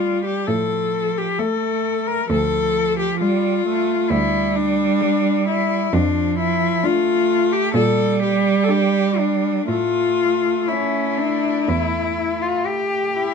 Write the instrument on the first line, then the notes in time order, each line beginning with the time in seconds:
cello
Already playing: G3 A3 F4
0.24 G4
0.47 A2 F3 A4
1.18 G4
1.39 A3 A4
2.07 A#4
2.30 D2 F3 A4
2.99 G4
3.21 G3 F4
3.66 A3
4.10 D2 G3 E4
4.56 D4
5.01 G3
5.48 E4
5.93 F2 F3 D4
6.38 E4
6.84 A3 D4 F4
7.53 G4
7.74 A#2 G3 A4
8.22 G4
8.64 A4
8.69 D4 G4
9.19 D4
9.68 A2 A3 F4
10.68 C#4 E4
11.18 D4
11.69 E2 E4
12.42 F4
12.66 G4
13.17 E4